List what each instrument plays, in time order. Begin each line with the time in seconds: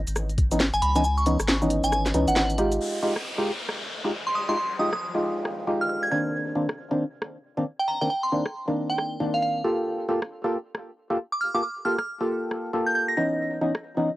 0.07 sub bass G#1, closed hi-hat, shaker
0.16 cross-stick, shaker
0.29 closed hi-hat, shaker
0.38 kick, closed hi-hat
0.51 synth stab E3 B3 C#4 D#4, closed hi-hat, shaker
0.60 snare, shaker
0.73 sub bass G#1, synth bell G#5, closed hi-hat, shaker
0.82 sub bass C#2, synth bell B5, closed hi-hat
0.95 synth stab E3 B3 C#4 D#4, synth bell G#5, closed hi-hat, shaker
1.04 synth bell G#5, shaker
1.17 synth bell C#6, shaker
1.26 synth stab E3 B3 C#4 D#4, closed hi-hat
1.40 sub bass G#1, cross-stick, closed hi-hat, shaker
1.48 snare, shaker
1.62 synth stab E3 B3 C#4 D#4, shaker
1.70 closed hi-hat
1.84 sub bass G#1, synth bell G#5, closed hi-hat, shaker
1.92 cross-stick, shaker
2.06 snare, closed hi-hat, shaker
2.14 sub bass C#2, synth stab E3 B3 C#4 D#4, closed hi-hat
2.28 sub bass G#1, synth bell F#5, closed hi-hat, shaker
2.36 synth bell F#5, snare, shaker
2.50 closed hi-hat, shaker
2.58 synth stab G#3 D#4 F4 G4, closed hi-hat
2.72 closed hi-hat, shaker
2.81 downlifter
3.03 synth stab G#3 D#4 F4 G4
3.16 cross-stick
3.38 synth stab G#3 D#4 F4 G4
3.69 cross-stick
4.04 synth stab G#3 D#4 F4 G4
4.27 synth bell C6
4.35 synth bell D#6
4.49 synth stab G#3 D#4 F4 G4, synth bell C6
4.57 synth bell C6
4.79 synth stab G#3 D#4 F4 G4, synth bell D#6
4.93 synth bell D#6, cross-stick
5.15 synth stab G#3 D#4 F4 G4
5.45 cross-stick
5.67 synth stab G#3 D#4 F4 G4
5.81 synth bell F6
5.89 synth bell F6
6.03 synth bell G#6
6.11 synth stab D#3 A#3 C4 D4, synth bell G#6
6.55 synth stab D#3 A#3 C4 D4
6.69 cross-stick
6.91 synth stab D#3 A#3 C4 D4
7.22 cross-stick
7.57 synth stab D#3 A#3 C4 D4
7.79 synth bell G5
7.88 synth bell A#5
8.01 synth stab D#3 A#3 C4 D4, synth bell G5
8.10 synth bell G5
8.23 synth bell C6
8.32 synth stab D#3 A#3 C4 D4
8.46 cross-stick
8.68 synth stab D#3 A#3 C4 D4
8.90 synth bell G5
8.98 cross-stick
9.20 synth stab D#3 A#3 C4 D4
9.34 synth bell F5
9.42 synth bell F5
9.64 synth stab A#3 F4 G4 A4
10.09 synth stab A#3 F4 G4 A4
10.22 cross-stick
10.44 synth stab A#3 F4 G4 A4
10.75 cross-stick
11.10 synth stab A#3 F4 G4 A4
11.32 synth bell D6
11.41 synth bell F6
11.54 synth stab A#3 F4 G4 A4, synth bell D6
11.63 synth bell D6
11.85 synth stab A#3 F4 G4 A4, synth bell F6
11.98 synth bell F6, cross-stick
12.21 synth stab A#3 F4 G4 A4
12.51 cross-stick
12.73 synth stab A#3 F4 G4 A4
12.87 synth bell G6
12.95 synth bell G6
13.09 synth bell A#6
13.17 synth stab E3 B3 C#4 D#4, synth bell A#6
13.61 synth stab E3 B3 C#4 D#4
13.75 cross-stick
13.97 synth stab E3 B3 C#4 D#4